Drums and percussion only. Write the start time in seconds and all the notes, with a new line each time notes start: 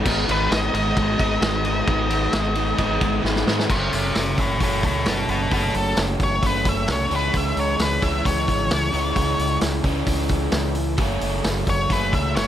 0.06 kick, crash
0.29 ride
0.52 snare, ride
0.74 ride
0.97 kick, ride
1.19 kick, ride
1.42 snare, ride
1.65 ride
1.87 kick, ride
2.10 ride
2.33 snare, ride
2.55 ride
2.78 kick, ride
3.01 kick, ride
3.25 snare
3.36 snare
3.48 snare
3.59 snare
3.70 kick, crash
3.93 open hi-hat
4.15 snare, open hi-hat
4.38 kick, open hi-hat
4.60 kick, open hi-hat
4.83 kick, open hi-hat
5.05 snare, open hi-hat
5.29 open hi-hat
5.51 kick, open hi-hat
5.74 open hi-hat
5.97 snare, open hi-hat
6.20 kick, open hi-hat
6.43 kick, open hi-hat
6.65 kick, open hi-hat
6.88 snare, open hi-hat
7.11 open hi-hat
7.33 kick, open hi-hat
7.57 open hi-hat
7.79 snare, open hi-hat
8.02 kick, open hi-hat
8.25 kick, open hi-hat
8.48 kick, open hi-hat
8.71 snare, open hi-hat
8.94 open hi-hat
9.16 kick, open hi-hat
9.39 open hi-hat
9.61 snare, open hi-hat
9.84 kick, open hi-hat
10.07 kick, open hi-hat
10.29 kick, open hi-hat
10.52 snare, open hi-hat
10.75 open hi-hat
10.97 kick, open hi-hat
11.21 open hi-hat
11.44 snare, open hi-hat
11.67 kick, open hi-hat
11.90 kick, open hi-hat
12.13 kick, open hi-hat
12.36 snare, open hi-hat